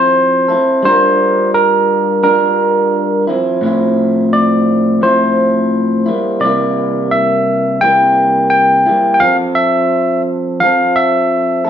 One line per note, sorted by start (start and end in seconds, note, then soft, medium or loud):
0.00 0.53 F3 medium
0.00 0.50 C4 medium
0.00 0.49 E4 medium
0.00 0.47 A4 medium
0.00 0.84 C5 loud
0.48 0.84 C4 soft
0.48 0.84 E4 soft
0.48 0.84 A4 medium
0.83 2.22 G3 medium
0.83 2.23 D4 medium
0.83 2.24 F4 medium
0.83 1.50 C5 medium
0.87 2.25 A#4 medium
1.54 2.22 A#4 medium
2.23 3.28 G3 medium
2.23 3.28 D4 medium
2.23 3.27 F4 medium
2.23 3.24 A#4 medium
2.23 3.29 A#4 medium
3.27 3.62 F3 medium
3.27 3.63 C4 medium
3.27 3.63 E4 medium
3.61 5.00 A2 loud
3.61 5.01 F3 medium
3.61 5.03 C4 loud
3.66 5.03 E4 loud
4.33 5.05 D5 medium
5.01 6.07 A2 medium
5.01 6.07 F3 medium
5.01 6.07 C4 medium
5.01 6.05 E4 medium
5.01 6.47 C5 medium
6.06 6.41 G3 soft
6.06 6.42 A#3 soft
6.06 6.42 E4 medium
6.40 7.80 C3 medium
6.40 7.81 G3 medium
6.40 7.82 A#3 medium
6.40 7.14 D5 medium
6.45 7.83 E4 medium
7.11 7.84 E5 medium
7.81 8.86 C3 medium
7.81 8.86 G3 medium
7.81 8.86 A#3 medium
7.81 8.86 E4 medium
7.81 8.47 G5 loud
8.50 9.13 G5 loud
8.86 9.19 G3 soft
8.86 9.21 A#3 soft
8.86 9.21 E4 medium
9.14 9.21 G5 medium
9.20 10.60 F3 medium
9.20 10.60 C4 medium
9.20 9.36 F5 loud
9.25 10.62 A4 medium
9.55 10.21 E5 medium
10.60 11.69 F3 medium
10.60 11.66 C4 medium
10.60 11.63 A4 medium
10.60 10.97 F5 loud
10.96 11.70 E5 loud
11.65 11.70 E4 soft
11.65 11.70 A4 medium